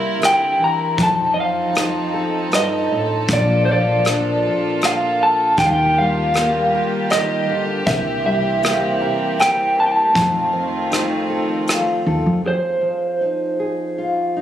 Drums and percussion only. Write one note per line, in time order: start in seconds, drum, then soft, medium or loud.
0.22 cross-stick medium
0.22 closed hi-hat soft
0.98 kick medium
0.98 closed hi-hat soft
1.75 cross-stick medium
1.75 closed hi-hat soft
2.52 cross-stick medium
2.52 closed hi-hat soft
3.28 kick medium
3.28 closed hi-hat soft
4.05 cross-stick medium
4.05 closed hi-hat soft
4.81 cross-stick medium
4.81 closed hi-hat soft
5.57 kick medium
5.57 closed hi-hat soft
6.34 cross-stick medium
6.34 closed hi-hat soft
7.10 cross-stick medium
7.10 closed hi-hat soft
7.87 kick medium
7.87 closed hi-hat soft
8.63 cross-stick medium
8.63 closed hi-hat soft
9.40 cross-stick medium
9.40 closed hi-hat soft
10.15 kick medium
10.15 closed hi-hat medium
10.92 cross-stick medium
10.92 closed hi-hat medium
11.68 cross-stick medium
11.68 closed hi-hat soft